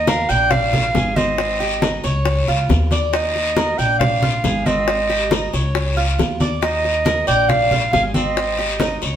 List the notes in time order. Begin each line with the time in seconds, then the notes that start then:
Already playing: D#2
0.07 A#4 F5, high bongo, high conga, short guiro
0.29 A#1 D5 G5, high bongo, high conga, short guiro
0.51 F5, high bongo, high conga, low conga, long guiro
0.72 F4, high bongo, high conga, low conga
0.95 G#1 G#4, high bongo, low bongo, high conga, short guiro
1.16 C4 D#5, high conga, short guiro
1.38 high bongo, high conga, long guiro
1.60 G4, high bongo, high conga
1.82 D#4, high bongo, high conga, short guiro
2.04 C#2 C#5, high bongo, high conga, short guiro
2.25 high bongo, high conga, long guiro
2.48 C#2 F4, high bongo, high conga
2.69 D#2, high bongo, low bongo, high conga, short guiro
2.91 D5, high conga, short guiro
3.13 D#4 D#5, high bongo, high conga, long guiro
3.35 high bongo, high conga
3.56 A#4, high bongo, high conga, short guiro
3.78 A#1 D5 G5, high bongo, high conga, short guiro
3.99 F5, high bongo, high conga, low conga, long guiro
4.22 F4, high bongo, high conga, low conga
4.44 G#1 G#4, high bongo, low bongo, high conga, short guiro
4.66 C4 D#5, high conga, short guiro
4.88 high bongo, high conga, long guiro
5.10 G4, high bongo, high conga
5.31 D#4, high bongo, high conga, short guiro
5.53 C#2 C#5, high bongo, high conga, short guiro
5.75 high bongo, high conga, long guiro
5.97 F4, high bongo, high conga
6.19 D#2, high bongo, low bongo, high conga, short guiro
6.40 D5, high conga, short guiro
6.61 D#4 D#5, high bongo, high conga, long guiro
6.84 high bongo, high conga
7.05 A#4, high bongo, high conga, short guiro
7.27 A#1 D5 G5, high bongo, high conga, short guiro
7.49 F5, high bongo, high conga, low conga, long guiro
7.71 F4, high bongo, high conga, low conga
7.93 G#1 G#4 F5, high bongo, low bongo, high conga, short guiro
8.14 C4 D#5, high conga, short guiro
8.36 high bongo, high conga, long guiro
8.58 G4, high bongo, high conga
8.80 D#4, high bongo, high conga, short guiro
9.02 C#2 C#5, high bongo, high conga, short guiro